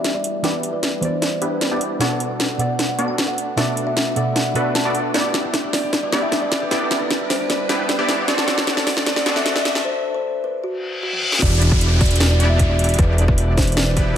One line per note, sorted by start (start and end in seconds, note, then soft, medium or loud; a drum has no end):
0.00 0.41 E3 medium
0.00 1.98 G3 medium
0.00 0.41 B3 medium
0.00 0.41 D4 medium
0.00 8.24 D4 medium
0.00 0.41 E4 medium
0.00 1.98 E4 medium
0.00 0.41 G4 medium
0.00 0.42 G4 medium
0.00 1.98 B4 medium
0.00 0.41 D5 medium
0.00 0.43 D5 medium
0.00 riser medium
0.04 snare soft
0.04 closed hi-hat medium
0.14 0.33 D5 medium
0.24 closed hi-hat medium
0.42 0.99 E3 medium
0.42 1.00 B3 medium
0.42 1.39 B3 medium
0.42 1.39 D4 medium
0.42 1.39 E4 medium
0.42 1.39 G4 medium
0.42 1.01 G4 medium
0.42 0.62 B4 medium
0.42 1.39 D5 medium
0.42 snare soft
0.42 closed hi-hat medium
0.46 1.01 D5 medium
0.63 closed hi-hat medium
0.73 0.92 B4 medium
0.83 snare medium
0.83 closed hi-hat medium
1.01 1.97 E3 medium
1.01 1.98 B3 medium
1.01 1.99 G4 medium
1.01 1.15 C5 medium
1.01 closed hi-hat medium
1.05 1.99 D5 loud
1.22 1.47 D5 medium
1.22 snare medium
1.22 closed hi-hat medium
1.42 1.69 B3 medium
1.42 1.69 D4 medium
1.42 1.69 E4 medium
1.42 1.69 G4 medium
1.42 1.69 B4 medium
1.42 closed hi-hat medium
1.61 1.86 D5 medium
1.61 snare medium
1.61 closed hi-hat medium
1.71 1.98 B3 loud
1.71 1.98 D4 medium
1.71 1.98 E4 medium
1.71 1.98 G4 medium
1.71 1.98 D5 loud
1.81 closed hi-hat medium
1.99 2.56 B2 medium
1.99 5.11 A3 medium
1.99 2.57 B3 medium
1.99 2.96 B3 medium
1.99 2.96 D4 medium
1.99 5.11 F#4 medium
1.99 2.96 F#4 medium
1.99 2.96 A4 medium
1.99 2.57 A4 medium
1.99 5.11 B4 medium
1.99 2.96 D5 loud
1.99 2.19 F#5 loud
1.99 snare medium
1.99 closed hi-hat medium
2.03 2.58 D5 medium
2.20 closed hi-hat medium
2.40 snare medium
2.40 closed hi-hat medium
2.57 3.54 B2 medium
2.57 3.55 B3 medium
2.57 3.56 A4 medium
2.57 3.56 D5 medium
2.57 2.78 F#5 medium
2.57 closed hi-hat medium
2.79 snare medium
2.79 closed hi-hat medium
2.89 3.01 F#5 medium
2.99 3.55 B3 medium
2.99 3.55 D4 medium
2.99 3.55 F#4 medium
2.99 3.55 A4 medium
2.99 3.55 D5 medium
2.99 closed hi-hat medium
3.08 3.21 G5 medium
3.18 snare medium
3.18 closed hi-hat medium
3.28 3.47 F#5 medium
3.38 closed hi-hat medium
3.56 4.13 B2 medium
3.56 4.14 B3 medium
3.56 4.53 B3 medium
3.56 4.53 D4 medium
3.56 4.53 F#4 medium
3.56 4.53 A4 medium
3.56 4.14 A4 medium
3.56 4.53 D5 medium
3.56 4.15 D5 medium
3.56 3.76 E5 medium
3.56 snare medium
3.56 closed hi-hat medium
3.77 closed hi-hat medium
3.87 4.05 E5 medium
3.97 snare medium
3.97 closed hi-hat medium
4.15 4.52 B2 medium
4.15 4.53 B3 medium
4.15 4.54 A4 medium
4.15 4.54 D5 loud
4.15 4.29 F#5 medium
4.15 closed hi-hat medium
4.36 4.61 F#5 medium
4.36 snare medium
4.36 closed hi-hat medium
4.54 5.11 B2 medium
4.54 5.12 B3 medium
4.54 4.83 B3 medium
4.54 4.83 D4 medium
4.54 4.83 F#4 medium
4.54 4.83 A4 medium
4.54 5.12 A4 medium
4.54 4.83 B4 medium
4.54 5.13 D5 loud
4.54 closed hi-hat medium
4.75 5.00 A5 medium
4.75 snare medium
4.75 closed hi-hat medium
4.85 5.12 B3 loud
4.85 5.12 D4 medium
4.85 5.12 F#4 medium
4.85 5.12 A4 medium
4.85 5.12 D5 loud
4.95 closed hi-hat medium
5.14 8.25 G3 medium
5.14 6.10 B3 loud
5.14 6.10 D4 medium
5.14 5.44 D4 medium
5.14 6.10 E4 medium
5.14 8.25 E4 medium
5.14 6.10 G4 medium
5.14 8.25 B4 medium
5.14 6.10 D5 loud
5.14 5.33 D5 loud
5.14 snare medium
5.14 closed hi-hat medium
5.24 6.02 E5 medium
5.34 5.83 G4 medium
5.34 snare medium
5.34 closed hi-hat medium
5.44 5.92 D4 medium
5.54 5.63 E4 medium
5.54 snare medium
5.54 closed hi-hat medium
5.64 6.32 E4 medium
5.73 6.51 D5 medium
5.73 5.92 D5 medium
5.73 snare medium
5.73 open hi-hat medium
5.83 6.12 G4 loud
5.93 6.22 D4 medium
5.93 snare medium
5.93 closed hi-hat medium
6.03 6.15 D5 medium
6.03 6.81 E5 medium
6.12 6.69 B3 medium
6.12 6.69 D4 medium
6.12 6.69 E4 medium
6.12 6.69 G4 medium
6.12 6.61 G4 medium
6.12 6.69 D5 medium
6.12 snare medium
6.12 closed hi-hat medium
6.22 6.71 D4 medium
6.22 6.35 E5 medium
6.32 6.42 E4 medium
6.32 snare medium
6.32 closed hi-hat medium
6.42 7.10 E4 medium
6.42 6.60 D5 medium
6.52 7.30 D5 medium
6.52 snare medium
6.52 closed hi-hat medium
6.61 6.91 G4 loud
6.71 7.67 B3 medium
6.71 7.67 D4 medium
6.71 7.01 D4 medium
6.71 7.67 E4 medium
6.71 7.67 G4 medium
6.71 6.90 B4 medium
6.71 7.67 D5 loud
6.71 snare medium
6.71 closed hi-hat medium
6.81 7.59 E5 medium
6.91 7.40 G4 medium
6.91 snare medium
6.91 closed hi-hat medium
7.00 7.49 D4 medium
7.00 7.19 B4 medium
7.11 7.20 E4 medium
7.11 snare medium
7.11 closed hi-hat medium
7.20 7.88 E4 medium
7.30 7.42 C5 medium
7.30 8.08 D5 medium
7.30 snare medium
7.30 open hi-hat loud
7.40 7.69 G4 loud
7.49 7.79 D4 medium
7.49 7.74 D5 medium
7.49 snare medium
7.49 closed hi-hat medium
7.59 9.32 E5 medium
7.69 7.96 B3 medium
7.69 7.96 D4 medium
7.69 7.96 E4 medium
7.69 8.18 G4 medium
7.69 7.96 G4 medium
7.69 7.96 B4 medium
7.69 snare medium
7.69 closed hi-hat medium
7.79 8.27 D4 medium
7.89 7.98 E4 medium
7.89 8.14 D5 medium
7.89 snare medium
7.89 closed hi-hat medium
7.99 8.26 B3 loud
7.99 8.26 D4 medium
7.99 10.60 E4 medium
7.99 8.26 E4 medium
7.99 8.26 G4 medium
7.99 8.26 D5 loud
8.08 8.86 D5 medium
8.08 snare medium
8.08 closed hi-hat medium
8.18 8.44 G4 loud
8.28 9.83 A3 medium
8.28 9.24 C4 loud
8.28 8.57 D4 medium
8.28 9.24 D4 medium
8.28 9.83 D4 medium
8.28 9.24 F#4 medium
8.28 9.83 F#4 medium
8.28 9.24 A4 medium
8.28 9.83 C5 medium
8.28 8.46 D5 loud
8.28 9.24 D5 loud
8.28 snare medium
8.28 closed hi-hat medium
8.38 9.16 F#5 medium
8.38 snare medium
8.48 8.96 A4 medium
8.48 snare medium
8.48 closed hi-hat medium
8.57 9.06 D4 medium
8.57 snare medium
8.67 8.77 F#4 medium
8.67 snare loud
8.67 closed hi-hat medium
8.77 9.45 F#4 medium
8.77 snare medium
8.87 9.05 D5 medium
8.87 9.65 D5 medium
8.87 snare medium
8.87 open hi-hat loud
8.97 9.26 A4 loud
8.97 snare medium
9.06 9.36 D4 medium
9.06 snare loud
9.06 closed hi-hat medium
9.16 9.29 D5 medium
9.16 10.77 F#5 medium
9.16 snare medium
9.26 9.83 C4 medium
9.26 9.83 D4 medium
9.26 9.83 F#4 medium
9.26 9.83 A4 medium
9.26 9.75 A4 medium
9.26 9.83 D5 medium
9.26 snare loud
9.26 closed hi-hat medium
9.36 11.42 D4 medium
9.36 9.48 E5 medium
9.36 snare medium
9.45 9.55 F#4 medium
9.45 snare loud
9.45 closed hi-hat medium
9.56 11.97 F#4 medium
9.56 9.74 D5 medium
9.56 snare medium
9.65 11.50 D5 medium
9.65 snare loud
9.65 closed hi-hat medium
9.75 11.95 A4 loud
9.75 snare medium
9.85 10.04 C5 loud
10.14 10.33 C5 loud
10.44 10.56 B4 medium
10.64 10.88 F#4 medium
10.64 reverse cymbal medium
11.03 11.27 F#4 medium
11.13 high tom medium
11.22 mid tom medium
11.32 snare medium
11.42 12.97 E1 medium
11.42 12.38 B3 loud
11.42 12.38 D4 medium
11.42 11.51 D4 medium
11.42 12.38 E4 medium
11.42 12.38 G4 medium
11.42 12.38 D5 loud
11.42 11.60 D5 loud
11.42 kick loud
11.42 closed hi-hat medium
11.42 crash loud
11.42 downlifter medium
11.52 12.20 D4 medium
11.62 11.81 B4 medium
11.62 closed hi-hat medium
11.72 12.00 E4 medium
11.72 kick loud
11.81 12.10 B4 medium
11.81 closed hi-hat medium
11.91 12.69 G4 medium
12.01 12.49 E4 medium
12.01 12.19 D5 loud
12.01 kick loud
12.01 open hi-hat medium
12.06 closed hi-hat medium
12.11 12.40 B4 medium
12.11 closed hi-hat medium
12.16 closed hi-hat medium
12.20 12.30 D4 medium
12.20 snare loud
12.20 closed hi-hat medium
12.30 12.98 D4 medium
12.30 12.42 D5 medium
12.40 12.96 B3 medium
12.40 12.96 D4 medium
12.40 12.96 E4 medium
12.40 12.96 G4 medium
12.40 12.59 B4 medium
12.40 12.96 D5 medium
12.40 closed hi-hat medium
12.50 12.79 E4 medium
12.50 12.62 E5 medium
12.59 12.89 B4 medium
12.59 kick medium
12.59 closed hi-hat medium
12.69 13.47 G4 medium
12.69 12.88 D5 medium
12.79 13.28 E4 medium
12.79 closed hi-hat medium
12.84 closed hi-hat medium
12.89 13.18 B4 medium
12.89 closed hi-hat medium
12.94 closed hi-hat medium
12.98 14.18 E1 medium
12.98 13.94 B3 medium
12.98 13.94 D4 medium
12.98 13.08 D4 medium
12.98 13.94 E4 medium
12.98 13.94 G4 medium
12.98 13.17 B4 loud
12.98 13.94 D5 loud
12.98 kick loud
12.98 closed hi-hat medium
13.09 13.76 D4 medium
13.18 13.37 B4 medium
13.18 closed hi-hat medium
13.28 13.57 E4 medium
13.28 13.47 B4 loud
13.28 kick loud
13.38 13.67 B4 medium
13.38 closed hi-hat medium
13.48 14.18 G4 medium
13.57 14.06 E4 medium
13.57 13.70 C5 medium
13.57 kick loud
13.57 snare medium
13.57 open hi-hat medium
13.62 closed hi-hat medium
13.67 13.96 B4 medium
13.67 closed hi-hat soft
13.72 closed hi-hat medium
13.77 13.86 D4 medium
13.77 14.02 D5 loud
13.77 snare loud
13.77 closed hi-hat medium
13.87 14.18 D4 medium
13.96 14.18 B3 medium
13.96 14.18 D4 medium
13.96 14.18 E4 medium
13.96 14.18 G4 medium
13.96 14.16 B4 medium
13.96 14.18 B4 medium
13.96 kick medium
13.96 closed hi-hat medium
14.07 14.18 E4 medium